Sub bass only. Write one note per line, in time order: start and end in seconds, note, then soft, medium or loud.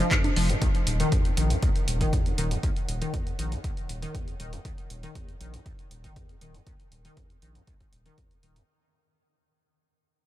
0.37 0.52 F1 medium
0.87 1.03 D#1 loud
1.37 1.53 A#1 medium
1.88 2.03 D#1 medium
2.38 2.54 D#1 medium
2.89 3.04 D#1 loud
3.39 3.55 A#1 medium
3.89 4.05 D#1 medium
4.40 4.55 D#1 medium
4.90 5.06 D#1 medium
5.41 5.56 A#1 medium
5.91 6.07 D#1 medium
6.41 6.57 D#1 medium
6.92 7.08 D#1 loud
7.42 7.58 A#1 medium
7.93 8.08 D#1 medium
8.43 8.59 D#1 medium